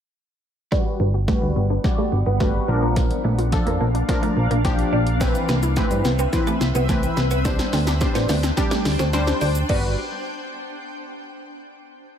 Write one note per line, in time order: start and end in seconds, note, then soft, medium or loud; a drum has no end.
0.72 1.04 G3 medium
0.72 2.66 G3 medium
0.72 0.84 G3 loud
0.72 2.66 B3 medium
0.72 0.84 D4 medium
0.72 1.04 F#4 medium
0.72 1.04 B4 medium
0.72 2.66 F#5 medium
0.72 kick loud
0.72 snare soft
1.00 1.33 G1 loud
1.00 1.12 B3 medium
1.00 1.12 D4 medium
1.14 1.26 F#4 medium
1.14 muted clean electric guitar stroke soft
1.28 1.60 G3 medium
1.28 1.40 A3 medium
1.28 1.60 F#4 medium
1.28 1.40 G4 medium
1.28 1.60 B4 loud
1.28 kick loud
1.28 snare medium
1.42 1.53 D2 medium
1.42 1.54 G3 medium
1.56 1.78 G1 medium
1.56 1.68 B3 medium
1.56 muted clean electric guitar stroke soft
1.70 1.82 B3 medium
1.70 1.82 D4 medium
1.84 2.16 G3 medium
1.84 2.16 F#4 medium
1.84 1.96 F#4 loud
1.84 2.16 D5 loud
1.84 kick loud
1.84 snare medium
1.98 2.10 A3 medium
1.98 2.10 G4 medium
2.12 2.23 G1 medium
2.12 muted clean electric guitar stroke soft
2.26 2.59 G1 medium
2.26 2.38 B3 medium
2.40 2.68 G3 medium
2.40 2.52 A3 medium
2.40 2.52 D4 medium
2.40 2.68 F#4 medium
2.40 2.69 B4 loud
2.40 kick loud
2.40 snare medium
2.55 muted clean electric guitar stroke soft
2.68 3.12 A#1 medium
2.68 3.36 F3 medium
2.68 5.18 A#3 medium
2.68 5.18 D4 medium
2.68 3.36 D4 medium
2.68 3.36 A#4 loud
2.68 5.18 F5 medium
2.83 2.94 A#3 medium
2.96 3.08 F3 medium
2.96 3.08 A#3 medium
2.96 kick loud
2.96 snare medium
2.96 closed hi-hat medium
3.11 muted clean electric guitar stroke soft
3.11 closed hi-hat soft
3.24 3.57 A#1 loud
3.24 3.36 A3 medium
3.24 3.37 D4 medium
3.38 3.50 F4 medium
3.38 closed hi-hat soft
3.52 3.84 F3 medium
3.52 3.84 D4 medium
3.52 3.84 A4 loud
3.52 3.64 F5 medium
3.52 muted clean electric guitar stroke soft
3.52 kick loud
3.52 snare medium
3.52 closed hi-hat medium
3.67 3.78 F2 medium
3.67 3.79 F3 medium
3.67 3.79 A#3 medium
3.67 closed hi-hat soft
3.81 4.03 A#1 medium
3.81 3.93 A#3 medium
3.95 4.07 D4 medium
3.95 closed hi-hat medium
4.08 4.40 F3 medium
4.08 4.40 D4 medium
4.08 4.21 F4 loud
4.08 4.40 A#4 loud
4.08 kick loud
4.08 snare medium
4.08 closed hi-hat medium
4.23 4.35 A3 medium
4.23 4.35 F5 medium
4.23 closed hi-hat medium
4.37 4.48 A#1 medium
4.37 muted clean electric guitar stroke soft
4.51 4.84 A#1 medium
4.51 4.63 A#3 medium
4.51 closed hi-hat soft
4.64 4.96 F3 medium
4.64 4.96 D4 medium
4.64 4.77 D4 medium
4.64 4.97 G4 medium
4.64 kick loud
4.64 snare medium
4.64 closed hi-hat medium
4.79 closed hi-hat medium
4.93 5.37 A#1 medium
4.93 5.05 D4 medium
5.07 closed hi-hat medium
5.21 5.52 E3 medium
5.21 5.33 G3 loud
5.21 5.52 C4 medium
5.21 7.43 C4 medium
5.21 5.33 C4 loud
5.21 7.43 B4 medium
5.21 5.53 B4 medium
5.21 7.43 E5 medium
5.21 kick loud
5.21 snare medium
5.21 closed hi-hat medium
5.21 shaker medium
5.35 closed hi-hat soft
5.35 shaker medium
5.49 5.82 C2 loud
5.49 5.61 B3 medium
5.49 5.61 C4 medium
5.49 snare medium
5.49 shaker medium
5.63 5.75 E4 medium
5.63 muted clean electric guitar stroke soft
5.63 closed hi-hat medium
5.63 shaker medium
5.76 6.08 E3 loud
5.76 5.89 A3 medium
5.76 6.09 C4 medium
5.76 5.89 G4 medium
5.76 6.09 B4 loud
5.76 kick loud
5.76 snare medium
5.76 closed hi-hat medium
5.76 shaker medium
5.91 6.02 G2 medium
5.91 6.03 G3 medium
5.91 closed hi-hat medium
5.91 shaker soft
6.05 6.27 C2 loud
6.05 6.17 B3 medium
6.05 muted clean electric guitar stroke soft
6.05 snare medium
6.05 shaker medium
6.19 6.31 B3 medium
6.19 6.31 C4 medium
6.19 closed hi-hat medium
6.19 shaker medium
6.33 6.65 E3 medium
6.33 6.65 C4 medium
6.33 6.45 E4 medium
6.33 6.65 B4 loud
6.33 kick loud
6.33 snare medium
6.33 closed hi-hat medium
6.33 shaker medium
6.47 6.59 A3 medium
6.47 6.59 G4 medium
6.47 closed hi-hat medium
6.47 shaker medium
6.61 6.72 C2 medium
6.61 muted clean electric guitar stroke soft
6.61 snare medium
6.61 shaker medium
6.75 7.08 C2 medium
6.75 6.87 B3 medium
6.75 closed hi-hat soft
6.75 shaker medium
6.89 7.21 E3 medium
6.89 7.01 A3 medium
6.89 7.21 C4 medium
6.89 7.01 C4 medium
6.89 7.21 B4 loud
6.89 kick loud
6.89 snare medium
6.89 closed hi-hat medium
6.89 shaker medium
7.03 muted clean electric guitar stroke soft
7.03 closed hi-hat medium
7.03 shaker medium
7.17 7.61 C2 medium
7.17 snare medium
7.17 shaker medium
7.31 7.43 B3 medium
7.31 closed hi-hat medium
7.31 shaker medium
7.45 7.77 G3 medium
7.45 7.57 G3 loud
7.45 9.67 D4 medium
7.45 7.57 D4 medium
7.45 7.77 D4 medium
7.45 9.67 C5 medium
7.45 7.77 C5 medium
7.45 9.67 G5 medium
7.45 kick loud
7.45 snare medium
7.45 closed hi-hat medium
7.45 shaker medium
7.59 muted clean electric guitar stroke soft
7.59 snare loud
7.59 closed hi-hat medium
7.59 shaker medium
7.73 8.06 D2 loud
7.73 7.85 A3 medium
7.73 7.85 C4 medium
7.73 snare loud
7.73 open hi-hat medium
7.73 shaker medium
7.87 7.99 D4 medium
7.87 snare loud
7.87 closed hi-hat medium
7.87 shaker medium
8.01 8.33 G3 medium
8.01 8.33 D4 medium
8.01 8.13 G4 medium
8.01 8.33 C5 loud
8.01 muted clean electric guitar stroke soft
8.01 kick loud
8.01 snare loud
8.01 closed hi-hat medium
8.01 shaker medium
8.15 8.26 A1 loud
8.15 8.27 G3 medium
8.15 8.27 B3 medium
8.15 snare loud
8.15 closed hi-hat medium
8.15 shaker medium
8.29 8.51 D2 medium
8.29 8.41 A3 medium
8.29 8.41 B3 medium
8.29 snare loud
8.29 open hi-hat medium
8.29 shaker medium
8.43 8.55 C4 medium
8.43 snare loud
8.43 closed hi-hat medium
8.43 shaker medium
8.57 8.89 G3 loud
8.57 8.89 D4 medium
8.57 8.69 D4 medium
8.57 8.89 G4 loud
8.57 kick loud
8.57 snare loud
8.57 closed hi-hat medium
8.57 shaker medium
8.71 8.83 A3 medium
8.71 8.83 G4 medium
8.71 snare loud
8.71 closed hi-hat medium
8.71 shaker medium
8.85 8.96 D2 medium
8.85 muted clean electric guitar stroke medium
8.85 snare loud
8.85 open hi-hat medium
8.85 shaker medium
8.99 9.32 D2 medium
8.99 9.11 A3 medium
8.99 9.11 C4 medium
8.99 snare loud
8.99 closed hi-hat medium
8.99 shaker medium
9.13 9.45 G3 medium
9.13 9.25 C4 medium
9.13 9.45 D4 medium
9.13 9.45 C5 medium
9.13 snare loud
9.13 closed hi-hat medium
9.13 shaker medium
9.27 snare loud
9.27 closed hi-hat medium
9.27 shaker medium
9.41 9.63 D2 loud
9.41 9.53 D4 medium
9.41 open hi-hat medium
9.41 shaker medium
9.55 closed hi-hat medium
9.55 shaker medium
9.69 9.95 G1 loud
9.69 9.96 G3 medium
9.69 9.96 B3 medium
9.69 9.96 D4 medium
9.69 9.86 D4 medium
9.69 9.96 F#4 medium
9.69 9.95 B4 loud
9.69 kick loud
9.69 crash medium